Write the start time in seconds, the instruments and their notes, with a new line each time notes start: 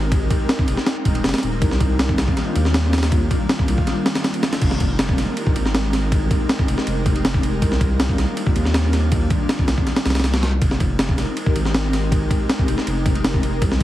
Already playing: sub bass G#1
0.11 ambient pad G#3 C4 D#4 G4 A#4, kick, ride
0.30 kick, ride
0.49 snare, ride
0.59 kick
0.68 sub bass F1, ride
0.77 snare
0.86 snare, ride
1.05 sub bass D#1, kick, ride
1.15 ride
1.24 sub bass F1, snare, ride
1.29 snare, ride
1.34 snare, ride
1.38 snare, ride
1.43 sub bass D#1, ride
1.62 sub bass C2, ambient pad D#3 G3 A#3 D4 F4, kick, ride
1.71 snare
1.80 kick, ride
1.99 snare, ride
2.09 kick
2.18 sub bass C2, snare, ride
2.28 kick
2.37 snare, ride
2.56 sub bass D#2, ride
2.65 snare
2.74 snare, ride
2.93 snare, ride
2.98 snare, ride
3.03 snare, ride
3.12 ambient pad D#3 G3 A#3 D4 F4, kick, ride
3.31 kick, ride
3.49 snare, ride
3.59 kick
3.68 sub bass C2, ride
3.78 kick
3.87 snare, ride
4.06 snare, ride
4.15 snare, ride
4.24 snare, ride
4.34 ride
4.43 snare, ride
4.53 snare, ride
4.62 sub bass F1, ambient pad G#3 C4 D#4 G4 A#4, kick, crash, ride
4.71 snare
4.80 kick, ride
4.99 snare, ride
5.09 kick
5.18 sub bass F1, snare, ride
5.37 ride
5.47 kick
5.56 sub bass G#1, ride
5.65 snare
5.74 snare, ride
5.93 snare, ride
6.12 ambient pad G#3 C4 D#4 G4 A#4, kick, ride
6.31 kick, ride
6.49 snare, ride
6.59 kick
6.68 sub bass F1, ride
6.78 snare
6.87 sub bass F1, ride
7.06 kick, ride
7.16 ride
7.25 snare, ride
7.34 kick
7.43 ride
7.62 sub bass C2, ambient pad D#3 G3 A#3 D4 F4, kick, ride
7.72 snare
7.81 kick, ride
8.00 snare, ride
8.09 kick
8.18 sub bass C2, snare, ride
8.37 ride
8.47 kick
8.56 sub bass D#2, ride
8.65 snare
8.74 snare, ride
8.93 snare, ride
9.12 ambient pad D#3 G3 A#3 D4 F4, kick, ride
9.30 kick, ride
9.49 snare, ride
9.59 kick
9.68 sub bass C2, snare, ride
9.78 kick
9.87 snare, ride
9.96 snare, ride
10.05 sub bass C2, snare, ride
10.10 snare, ride
10.15 snare, ride
10.20 snare, ride
10.24 snare, ride
10.34 snare, ride
10.43 snare, ride
10.62 sub bass F1, ambient pad G#3 C4 D#4 G4 A#4, kick, ride
10.71 snare
10.80 kick, ride
10.99 snare, ride
11.09 kick
11.18 sub bass F1, snare, ride
11.37 ride
11.46 kick
11.55 sub bass G#1, ride
11.65 snare
11.74 snare, ride
11.93 snare, ride
12.12 ambient pad G#3 C4 D#4 G4 A#4, kick, ride
12.31 kick, ride
12.49 snare, ride
12.59 kick
12.68 sub bass F1, ride
12.78 snare
12.87 sub bass F1, ride
13.06 kick, ride
13.15 ride
13.24 snare, ride
13.34 kick
13.43 ride
13.62 sub bass C2, ambient pad D#3 G3 A#3 D4 F4, kick, ride
13.72 snare